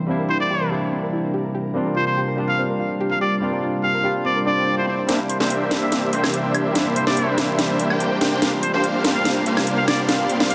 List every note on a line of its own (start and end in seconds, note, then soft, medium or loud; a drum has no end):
0.00 4.84 C3 medium
0.00 1.72 E3 medium
0.00 0.07 G3 medium
0.00 0.08 A#3 medium
0.00 0.09 C4 medium
0.00 0.10 D4 medium
0.00 4.84 D4 medium
0.00 0.11 E4 medium
0.00 5.05 A#4 medium
0.07 0.68 G3 medium
0.07 0.68 A#3 medium
0.07 0.69 C4 medium
0.07 0.13 C4 medium
0.07 0.69 D4 medium
0.11 0.70 E4 medium
0.19 0.26 A#4 medium
0.29 0.40 E4 medium
0.29 0.38 C5 medium
0.40 0.71 D5 medium
0.50 0.57 G4 medium
0.61 0.65 A#4 medium
0.69 1.72 G3 medium
0.69 1.72 A#3 medium
0.69 1.73 C4 medium
0.69 1.73 D4 medium
0.69 0.75 G4 medium
0.73 1.74 E4 medium
0.92 0.96 C4 medium
1.03 1.09 A#4 medium
1.13 1.23 E4 medium
1.34 1.41 G4 loud
1.45 1.48 A#4 medium
1.55 1.59 G4 medium
1.73 2.34 G3 medium
1.73 4.85 G3 medium
1.73 2.35 A#3 medium
1.73 2.35 C4 medium
1.73 1.79 C4 medium
1.73 2.36 D4 medium
1.77 2.36 F4 loud
1.86 1.93 A#4 medium
1.96 2.06 F4 medium
1.96 2.05 C5 medium
2.07 2.21 C5 medium
2.17 2.24 G4 loud
2.28 2.32 A#4 medium
2.36 3.39 G3 medium
2.36 3.39 A#3 medium
2.36 3.40 C4 medium
2.36 3.40 D4 medium
2.36 2.42 G4 loud
2.40 3.41 F4 medium
2.49 2.62 F5 medium
2.59 2.63 C4 medium
2.70 2.76 A#4 medium
2.80 2.90 F4 medium
3.00 3.07 G4 loud
3.11 3.15 A#4 medium
3.11 3.19 F5 medium
3.21 3.25 G4 medium
3.21 3.35 D5 medium
3.40 4.01 G3 medium
3.40 4.02 A#3 medium
3.40 4.02 C4 medium
3.40 3.46 C4 medium
3.40 4.03 D4 medium
3.44 4.03 F4 loud
3.53 3.59 A#4 medium
3.63 3.73 F4 medium
3.84 3.91 G4 medium
3.84 4.15 F5 medium
3.95 3.98 A#4 medium
4.04 4.44 G3 medium
4.04 4.44 A#3 medium
4.04 4.44 C4 medium
4.04 4.44 D4 medium
4.04 4.45 F4 medium
4.04 4.09 G4 loud
4.25 4.29 C4 medium
4.25 4.40 D5 medium
4.25 swell medium
4.36 4.42 A#4 medium
4.45 4.75 G3 medium
4.45 4.75 A#3 medium
4.45 4.75 C4 medium
4.45 4.53 D4 loud
4.45 4.75 D4 medium
4.45 4.76 F4 medium
4.45 4.76 D5 medium
4.67 4.77 D4 medium
4.77 5.05 G3 medium
4.77 5.06 A#3 medium
4.77 5.06 C4 medium
4.77 5.07 D4 medium
4.77 5.07 E4 medium
4.77 4.84 C5 medium
4.77 4.82 D5 medium
4.88 4.95 C4 medium
4.88 4.95 C5 medium
4.99 5.02 C5 medium
5.07 8.39 C3 medium
5.07 8.39 E3 medium
5.07 5.68 G3 medium
5.07 5.68 A#3 medium
5.07 5.19 A#3 medium
5.07 5.69 C4 medium
5.07 10.55 D4 medium
5.07 5.19 D4 medium
5.07 5.69 D4 medium
5.07 5.70 E4 medium
5.07 5.19 G4 medium
5.07 8.39 A#4 medium
5.07 5.19 C5 medium
5.07 5.19 E5 medium
5.07 snare soft
5.07 closed hi-hat medium
5.07 riser medium
5.30 5.38 C5 medium
5.30 closed hi-hat medium
5.40 6.10 A#3 medium
5.40 6.10 D4 medium
5.40 6.10 G4 medium
5.40 6.10 C5 medium
5.40 5.54 C5 medium
5.40 6.10 E5 loud
5.40 snare soft
5.50 closed hi-hat medium
5.69 6.72 G3 medium
5.69 6.72 A#3 medium
5.69 6.73 C4 medium
5.69 6.73 D4 medium
5.69 6.74 E4 medium
5.69 snare soft
5.69 closed hi-hat medium
5.82 5.96 E5 medium
5.92 snare soft
5.92 closed hi-hat medium
6.13 7.04 A#3 medium
6.13 7.04 D4 medium
6.13 7.04 G4 medium
6.13 7.04 C5 medium
6.13 6.27 C5 medium
6.13 7.04 E5 medium
6.13 closed hi-hat medium
6.24 snare soft
6.24 high woodblock medium
6.34 closed hi-hat medium
6.55 closed hi-hat medium
6.55 high woodblock medium
6.73 7.34 G3 medium
6.73 7.35 A#3 medium
6.73 7.35 C4 medium
6.73 7.36 D4 medium
6.73 7.36 E4 loud
6.73 snare soft
6.73 closed hi-hat medium
6.96 7.05 C5 medium
6.96 closed hi-hat medium
7.07 7.88 A#3 medium
7.07 7.88 D4 medium
7.07 7.88 G4 medium
7.07 7.88 C5 medium
7.07 7.38 D5 medium
7.07 7.88 E5 loud
7.07 snare soft
7.17 closed hi-hat medium
7.36 8.39 G3 medium
7.36 8.39 A#3 medium
7.36 8.40 C4 medium
7.36 8.40 D4 medium
7.36 8.41 E4 medium
7.36 snare medium
7.36 closed hi-hat medium
7.59 snare medium
7.59 closed hi-hat medium
7.80 closed hi-hat medium
7.90 8.19 A#3 medium
7.90 8.19 D4 medium
7.90 8.19 G4 medium
7.90 8.19 C5 medium
7.90 8.19 G5 loud
7.90 high woodblock medium
8.00 closed hi-hat medium
8.21 8.30 A#3 medium
8.21 8.30 D4 medium
8.21 8.30 G4 medium
8.21 8.30 C5 medium
8.21 8.30 G5 medium
8.21 snare medium
8.21 closed hi-hat medium
8.32 8.41 A#3 medium
8.32 8.41 D4 medium
8.32 8.41 G4 medium
8.32 8.41 C5 medium
8.32 8.41 G5 medium
8.40 10.55 C3 medium
8.40 9.01 G3 medium
8.40 10.55 G3 medium
8.40 9.02 A#3 medium
8.40 8.52 A#3 medium
8.40 9.02 C4 medium
8.40 8.52 D4 medium
8.40 9.03 D4 medium
8.40 9.03 F4 loud
8.40 8.52 G4 medium
8.40 10.55 A#4 medium
8.40 8.52 C5 medium
8.40 8.52 F5 medium
8.40 snare medium
8.40 closed hi-hat medium
8.63 8.72 C5 medium
8.63 closed hi-hat medium
8.74 9.44 A#3 medium
8.74 9.44 D4 medium
8.74 9.44 G4 medium
8.74 9.44 C5 medium
8.74 8.88 C5 medium
8.74 9.44 F5 loud
8.84 closed hi-hat medium
9.03 10.05 G3 medium
9.03 10.06 A#3 medium
9.03 10.06 C4 medium
9.03 10.07 D4 medium
9.03 snare medium
9.03 closed hi-hat medium
9.07 10.07 F4 medium
9.15 9.29 F5 medium
9.25 snare medium
9.25 closed hi-hat medium
9.46 10.38 A#3 medium
9.46 10.38 D4 medium
9.46 10.38 G4 medium
9.46 10.38 C5 medium
9.46 10.38 F5 medium
9.46 closed hi-hat medium
9.57 snare medium
9.57 high woodblock medium
9.67 closed hi-hat medium
9.78 9.86 F5 medium
9.88 10.02 D5 medium
9.88 snare medium
9.88 closed hi-hat medium
9.88 high woodblock medium
10.07 10.55 G3 medium
10.07 10.55 A#3 medium
10.07 10.55 C4 medium
10.07 10.55 D4 medium
10.07 snare medium
10.07 closed hi-hat medium
10.11 10.55 F4 medium
10.30 closed hi-hat medium
10.40 10.55 A#3 medium
10.40 10.55 D4 medium
10.40 10.55 G4 medium
10.40 10.55 C5 medium
10.40 10.55 F5 loud
10.40 snare medium
10.50 10.55 F5 medium
10.50 closed hi-hat medium